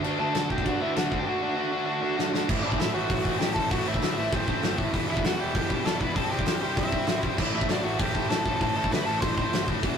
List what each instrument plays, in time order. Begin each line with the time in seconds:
0.03 picked electric bass D2, distorted electric guitar D3 A3 D4 F#4, crash
0.19 picked electric bass D2, distorted electric guitar D3 A3 D4 F#4, lead electric guitar A4 A5
0.34 picked electric bass D2, distorted electric guitar D3 A3 D4 F#4, snare, crash
0.50 picked electric bass D2, distorted electric guitar D3 A3 D4 F#4, lead electric guitar G4 G5, kick
0.58 kick
0.65 picked electric bass G2, distorted electric guitar D3 A3 D4 F#4, lead electric guitar F#4 F#5, kick, crash
0.80 picked electric bass D2, distorted electric guitar D3 A3 D4 F#4, lead electric guitar E4 E5
0.96 picked electric bass D2, distorted electric guitar D3 A3 D4 F#4, lead electric guitar F#4 F#5, snare, crash
1.11 picked electric bass D2, distorted electric guitar D3 A3 D4 F#4, kick
1.19 lead electric guitar G4 G5
1.26 distorted electric guitar D3 A3 D4 F#4, lead electric guitar F#4 F#5
1.41 distorted electric guitar D3 A3 D4 F#4
1.57 distorted electric guitar D3 A3 D4 F#4
1.72 distorted electric guitar D3 A3 D4 F#4
1.87 distorted electric guitar D3 A3 D4 F#4
2.03 distorted electric guitar D3 A3 D4 F#4
2.18 distorted electric guitar D3 A3 D4 F#4, snare
2.32 distorted electric guitar D3 A3 D4 F#4, snare
2.48 picked electric bass A1, distorted electric guitar A2 E3 A3 C4 E4, kick, crash
2.63 picked electric bass A1, distorted electric guitar A2 E3 A3 C4 E4, lead electric guitar D4 D5
2.72 kick
2.78 picked electric bass A1, distorted electric guitar A2 E3 A3 C4 E4, lead electric guitar E4 E5, snare, open hi-hat
2.94 picked electric bass A1, distorted electric guitar A2 E3 A3 C4 E4, lead electric guitar F#4 F#5
3.10 picked electric bass A1, distorted electric guitar A2 E3 A3 C4 E4, kick, open hi-hat
3.25 picked electric bass A1, distorted electric guitar A2 E3 A3 C4 E4, kick
3.39 picked electric bass A1, distorted electric guitar A2 E3 A3 C4 E4, lead electric guitar G4 G5, snare, open hi-hat
3.54 picked electric bass A1, distorted electric guitar A2 E3 A3 C4 E4, lead electric guitar A4 A5, kick
3.70 picked electric bass A1, distorted electric guitar A2 E3 A3 C4 E4, lead electric guitar F#4 F#5, kick, open hi-hat
3.86 picked electric bass A1, distorted electric guitar A2 E3 A3 C4 E4, lead electric guitar E4 E5
3.94 kick
4.02 picked electric bass D2, distorted electric guitar A2 E3 A3 C4 E4, snare, open hi-hat
4.17 picked electric bass A1, distorted electric guitar A2 E3 A3 C4 E4, lead electric guitar E4 E5
4.32 picked electric bass A1, distorted electric guitar A2 E3 A3 C4 E4, lead electric guitar C4 C5, kick, open hi-hat
4.47 distorted electric guitar A2 E3 A3 C4 E4, kick
4.62 picked electric bass G1, distorted electric guitar A2 E3 A3 C4 E4, snare, open hi-hat
4.78 picked electric bass A1, distorted electric guitar A2 E3 A3 C4 E4, kick
4.92 picked electric bass E1, overdriven electric guitar E2 B2, distorted electric guitar E3 G3 B3 E4, kick, open hi-hat
5.08 picked electric bass E1, overdriven electric guitar E2 B2, distorted electric guitar E3 G3 B3 E4, lead electric guitar E4
5.12 lead electric guitar E5
5.17 kick
5.23 picked electric bass E1, overdriven electric guitar E2 B2, distorted electric guitar E3 G3 B3 E4, lead electric guitar F#4 F#5, snare, open hi-hat
5.39 picked electric bass E1, overdriven electric guitar E2 B2, distorted electric guitar E3 G3 B3 E4, lead electric guitar G4 G5
5.55 picked electric bass E1, overdriven electric guitar E2 B2, distorted electric guitar E3 G3 B3 E4, kick, open hi-hat
5.70 picked electric bass E1, overdriven electric guitar E2 B2, distorted electric guitar E3 G3 B3 E4, kick
5.85 picked electric bass E1, overdriven electric guitar E2 B2, distorted electric guitar E3 G3 B3 E4, lead electric guitar A4 A5, snare, open hi-hat
6.00 picked electric bass E1, overdriven electric guitar E2 B2, distorted electric guitar E3 G3 B3 E4, lead electric guitar B4 B5, kick
6.16 picked electric bass C2, distorted electric guitar C3 E3 G3 C4 E4, lead electric guitar A4 A5, kick, open hi-hat
6.31 picked electric bass C2, distorted electric guitar C3 E3 G3 C4 E4, lead electric guitar G4 G5
6.39 kick
6.46 picked electric bass E2, distorted electric guitar C3 E3 G3 C4 E4, snare, open hi-hat
6.62 picked electric bass C2, distorted electric guitar C3 E3 G3 C4 E4, lead electric guitar G4 G5
6.77 picked electric bass C2, distorted electric guitar C3 E3 G3 C4 E4, lead electric guitar E4 E5, kick, open hi-hat
6.92 distorted electric guitar C3 E3 G3 C4 E4, kick
7.07 picked electric bass A1, distorted electric guitar C3 E3 G3 C4 E4, snare, open hi-hat
7.23 picked electric bass B1, distorted electric guitar C3 E3 G3 C4 E4, kick
7.38 picked electric bass A1, distorted electric guitar A2 E3 A3 C4 E4, kick, crash
7.54 picked electric bass A1, distorted electric guitar A2 E3 A3 C4 E4, lead electric guitar E4 E5
7.61 kick
7.69 picked electric bass A1, distorted electric guitar A2 E3 A3 C4 E4, lead electric guitar D4 D5, snare, open hi-hat
7.84 picked electric bass A1, distorted electric guitar A2 E3 A3 C4 E4, lead electric guitar F#4 F#5
7.99 picked electric bass A1, distorted electric guitar A2 E3 A3 C4 E4, lead electric guitar G4 G5, kick, open hi-hat
8.15 picked electric bass A1, distorted electric guitar A2 E3 A3 C4 E4, kick
8.30 picked electric bass A1, distorted electric guitar A2 E3 A3 C4 E4, lead electric guitar A4 A5, snare, open hi-hat
8.45 picked electric bass A1, distorted electric guitar A2 E3 A3 C4 E4, kick
8.61 picked electric bass A1, distorted electric guitar A2 E3 A3 C4 E4, lead electric guitar A4 A5, kick, open hi-hat
8.76 picked electric bass A1, distorted electric guitar A2 E3 A3 C4 E4, lead electric guitar A4 A5
8.84 kick
8.91 picked electric bass D2, distorted electric guitar A2 E3 A3 C4 E4, lead electric guitar B4 B5, snare, open hi-hat
9.06 picked electric bass A1, distorted electric guitar A2 E3 A3 C4 E4, lead electric guitar A4 A5
9.20 picked electric bass A1, distorted electric guitar A2 E3 A3 C4 E4, lead electric guitar C5 C6, kick, open hi-hat
9.37 distorted electric guitar A2 E3 A3 C4 E4, kick
9.52 picked electric bass G1, distorted electric guitar A2 E3 A3 C4 E4, snare, open hi-hat
9.67 picked electric bass D#2, distorted electric guitar A2 E3 A3 C4 E4, kick
9.83 picked electric bass E1, overdriven electric guitar E2 B2, distorted electric guitar E3 G3 B3 E4, kick, open hi-hat